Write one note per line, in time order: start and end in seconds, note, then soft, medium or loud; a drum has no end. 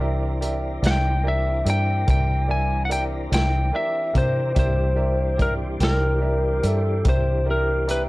0.00 0.80 C2 medium
0.00 4.53 E3 medium
0.00 4.53 C4 medium
0.00 4.53 D4 medium
0.00 0.31 G4 medium
0.00 4.53 A#4 medium
0.00 0.32 A#4 medium
0.00 0.32 D5 medium
0.00 0.32 E5 medium
0.41 0.73 G4 medium
0.41 0.73 A#4 soft
0.41 0.73 D5 medium
0.41 0.73 E5 medium
0.41 closed hi-hat medium
0.82 1.62 C2 medium
0.82 1.14 G4 soft
0.82 1.14 A#4 soft
0.82 1.14 D5 soft
0.82 1.15 E5 medium
0.82 closed hi-hat medium
0.86 1.28 G5 medium
0.86 snare medium
1.23 1.55 G4 soft
1.23 1.56 A#4 soft
1.23 1.56 D5 soft
1.23 1.56 E5 medium
1.28 1.69 E5 medium
1.64 2.04 G2 medium
1.64 1.97 G4 soft
1.64 1.97 A#4 soft
1.64 1.97 D5 soft
1.64 1.97 E5 medium
1.64 closed hi-hat medium
1.70 2.09 G5 medium
2.07 3.28 C2 medium
2.07 2.39 G4 soft
2.07 2.39 A#4 soft
2.07 2.39 D5 soft
2.07 2.39 E5 medium
2.07 2.51 G5 medium
2.07 kick loud
2.07 closed hi-hat medium
2.47 2.79 G3 soft
2.47 2.80 A#4 soft
2.47 2.80 D5 soft
2.47 2.80 E5 medium
2.47 2.85 G#5 medium
2.85 3.21 G4 soft
2.85 3.21 A#4 soft
2.85 2.92 F#5 medium
2.90 3.21 D5 soft
2.90 3.22 E5 medium
2.90 3.03 G5 medium
2.90 closed hi-hat medium
3.30 3.70 C2 medium
3.30 3.62 G4 soft
3.30 3.63 A#4 soft
3.30 3.63 D5 soft
3.30 3.63 E5 soft
3.30 closed hi-hat medium
3.34 3.76 G5 medium
3.34 snare loud
3.73 4.04 G4 soft
3.73 4.04 A#4 soft
3.73 4.05 D5 soft
3.73 4.05 E5 medium
3.73 4.17 E5 medium
4.13 4.53 C3 medium
4.13 4.45 G4 medium
4.13 4.45 A#4 soft
4.13 4.46 D5 soft
4.13 4.46 E5 medium
4.13 kick medium
4.13 closed hi-hat medium
4.18 4.58 C5 medium
4.54 5.77 C2 loud
4.54 8.09 E3 medium
4.54 8.09 G3 medium
4.54 8.09 C4 medium
4.54 8.09 D4 medium
4.54 4.87 G4 medium
4.54 4.87 A#4 soft
4.54 4.87 D5 soft
4.54 4.88 E5 medium
4.54 kick medium
4.54 closed hi-hat medium
4.59 5.42 C5 medium
4.95 5.28 G4 medium
4.95 5.28 A#4 soft
4.95 5.28 D5 soft
4.95 5.28 E5 medium
5.37 5.70 G4 soft
5.37 5.70 A#4 soft
5.37 5.70 D5 soft
5.37 5.70 E5 soft
5.37 kick medium
5.37 closed hi-hat soft
5.42 5.53 A#4 medium
5.80 6.60 C2 medium
5.80 6.12 G4 medium
5.80 6.12 A#4 medium
5.80 6.67 A#4 medium
5.80 6.12 D5 soft
5.80 6.12 G5 medium
5.80 snare medium
5.80 closed hi-hat medium
6.21 6.53 G4 soft
6.21 6.53 A#4 soft
6.21 6.53 D5 soft
6.21 6.53 E5 medium
6.62 7.02 G2 medium
6.62 6.94 G4 soft
6.62 6.95 A#4 soft
6.62 6.95 D5 soft
6.62 6.95 E5 medium
6.62 closed hi-hat medium
6.67 7.09 A4 medium
7.04 8.09 C2 medium
7.04 7.36 G4 medium
7.04 7.36 A#4 soft
7.04 7.36 D5 soft
7.04 7.37 E5 medium
7.04 kick loud
7.04 closed hi-hat medium
7.09 7.46 C5 medium
7.45 7.77 G4 soft
7.45 7.77 A#4 soft
7.45 7.78 D5 soft
7.45 7.78 E5 soft
7.51 7.88 A#4 medium
7.87 8.09 G4 soft
7.87 8.02 B4 medium
7.87 8.09 D5 soft
7.87 8.09 E5 medium
7.87 8.09 A#5 soft
7.87 closed hi-hat medium